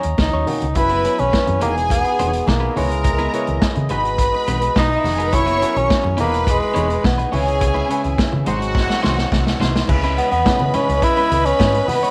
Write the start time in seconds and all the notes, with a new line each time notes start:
Already playing: C#4 F#4 C#5 D#5 A#5
0.03 D#2, muted clean electric guitar stroke, closed hi-hat
0.18 C#2 D#4, muted clean electric guitar stroke, kick, snare, muted conga, high conga
0.32 D#2 F#3 C#4 D#4 C#5, muted conga
0.47 D#3 A#3 C#4 F#4, muted clean electric guitar stroke, open hi-hat, high conga, low conga
0.62 C#2, muted clean electric guitar stroke, closed hi-hat
0.75 F#1 F#3 C#4 E4 G#4 B4 B5, muted clean electric guitar stroke, kick, closed hi-hat, muted conga, low conga
0.89 B3 E4 F#4 B4, closed hi-hat, muted conga
1.04 F#3 B3 C#4 E4 F#4 B4, closed hi-hat
1.18 B1 C#4, muted clean electric guitar stroke, closed hi-hat, high conga
1.33 muted clean electric guitar stroke, kick, snare, muted conga
1.46 F#2, muted clean electric guitar stroke, closed hi-hat, high conga
1.61 E1 E3 A#3 B3 D#4 F#4 G4 G#4 B4 G#5, closed hi-hat, high conga, low conga
1.69 G#4
1.75 muted clean electric guitar stroke, closed hi-hat
1.90 B3, kick, closed hi-hat, muted conga
2.04 muted clean electric guitar stroke, closed hi-hat
2.19 E1 B3 D#4 G#4 C#5, closed hi-hat, high conga
2.33 muted clean electric guitar stroke, closed hi-hat
2.46 B1 A#3, muted clean electric guitar stroke, kick, snare, high conga
2.60 B3 D#4 G#4 B4
2.74 C#2 C#3 G#3 B3 C#4 E4 G#4 A#4 C#5 D#5 A#5, open hi-hat, high conga, low conga
2.78 B4
2.91 muted clean electric guitar stroke, closed hi-hat
3.04 muted clean electric guitar stroke, kick, closed hi-hat, muted conga, low conga
3.18 B3 E4 G#4 B4, closed hi-hat, muted conga
3.33 C#3 B3 C#4 E4 G#4 B4 C#5, closed hi-hat
3.47 C#2, muted clean electric guitar stroke, closed hi-hat, high conga
3.62 muted clean electric guitar stroke, kick, snare, muted conga
3.75 C#3, muted clean electric guitar stroke, closed hi-hat, high conga
3.89 G#1 G#3 B3 D#4 F#4 G#4 B4 B5, closed hi-hat, high conga, low conga
4.05 muted clean electric guitar stroke, closed hi-hat
4.18 kick, closed hi-hat, muted conga
4.34 muted clean electric guitar stroke, muted conga
4.47 B1 G#3 D#4 F#4 B4, closed hi-hat, high conga
4.61 muted clean electric guitar stroke, closed hi-hat
4.76 B1 G#3 D#4 F#4 B4, kick, snare, high conga
4.90 D#4 D#5, muted clean electric guitar stroke, muted conga
4.98 E4 E5
5.04 F1 F#4 F#5, muted clean electric guitar stroke, snare, open hi-hat, high conga, low conga
5.13 G#4 G#5
5.18 G#3 D#4 F#4 A#4 B4 A#5, closed hi-hat
5.27 B4 B5
5.32 F#1 F#3 C#4 E4 G#4 B4 C#5 C#6, muted clean electric guitar stroke, kick, closed hi-hat, muted conga, low conga
5.46 B3 E4 F#4 B4, closed hi-hat
5.61 F#3 B3 C#4 E4 F#4 A4 B4, closed hi-hat
5.69 A#4
5.75 B1 C#4, muted clean electric guitar stroke, closed hi-hat, high conga
5.89 muted clean electric guitar stroke, kick, snare, muted conga
6.03 F#2, muted clean electric guitar stroke, high conga
6.17 E1 E3 A#3 B3 D#4 F#4 G#4 B4 D#5 B5, closed hi-hat, high conga, low conga
6.32 muted clean electric guitar stroke, closed hi-hat
6.47 G#3, kick, closed hi-hat, muted conga
6.60 muted clean electric guitar stroke, muted conga
6.74 E1 B3 D#4 G#4 C#5, closed hi-hat, high conga
6.89 muted clean electric guitar stroke, closed hi-hat
7.03 B1 B3, muted clean electric guitar stroke, kick, snare, high conga
7.18 B3 D#4 G#4 B4, closed hi-hat, muted conga
7.31 C#2 C#3 G#3 C#4 E4 G#4 B4 C#5 G#5, open hi-hat, high conga, low conga
7.47 muted clean electric guitar stroke, closed hi-hat
7.60 muted clean electric guitar stroke, kick, closed hi-hat, muted conga, low conga
7.74 G#3 C#4 E4 B4, muted conga
7.89 C#3 G#3 C#4 E4 B4 C#5, closed hi-hat
8.03 C#2, muted clean electric guitar stroke, closed hi-hat, high conga
8.18 muted clean electric guitar stroke, muted fingered electric bass stroke, kick, snare, muted conga
8.32 C#3, muted clean electric guitar stroke, high conga
8.46 G#1 F#3 G#3 C4 D#4 F#4 C5 F#5, closed hi-hat, high conga, low conga
8.61 muted clean electric guitar stroke, closed hi-hat
8.75 kick, snare
8.89 muted clean electric guitar stroke, snare
9.02 C2 G#3 D#4 F#4 C5, snare, high conga
9.18 muted clean electric guitar stroke, snare
9.32 C2, muted clean electric guitar stroke, kick, snare, high conga
9.45 muted clean electric guitar stroke, snare, muted conga
9.60 C2 G#3 D#4 F#4 C5, snare, high conga, low conga
9.74 G#3 D#4 F#4 C5, snare
9.88 C#2 C#3 E3 G#3 B3 C#4 E4 B4 D#5 B5, muted clean electric guitar stroke, kick, crash, low conga
10.02 G#3 C#4 E4 B4, closed hi-hat, muted conga
10.17 G#3 B3 C#4 E4 B4, closed hi-hat
10.31 E2 B3, muted clean electric guitar stroke, closed hi-hat, high conga
10.45 C#3 C#4 E4 B4, muted fingered electric bass stroke, kick, snare, muted conga
10.60 C#3, muted clean electric guitar stroke, muted conga, high conga
10.73 G#3 C#4 E4 B4, closed hi-hat, high conga, low conga
10.89 C#2, muted clean electric guitar stroke, closed hi-hat
11.02 E4, muted clean electric guitar stroke, kick, closed hi-hat, muted conga
11.17 G#3 C#4 E4 B4, closed hi-hat, muted conga
11.31 C#2, muted clean electric guitar stroke, closed hi-hat, high conga
11.46 C#4, muted clean electric guitar stroke, closed hi-hat
11.59 G#2 G#3 C#4 E4 B4, kick, snare, high conga
11.74 muted clean electric guitar stroke, closed hi-hat, muted conga
11.88 B3, muted clean electric guitar stroke, snare, open hi-hat, high conga, low conga
12.03 G#3 C#4 E4 C#5, closed hi-hat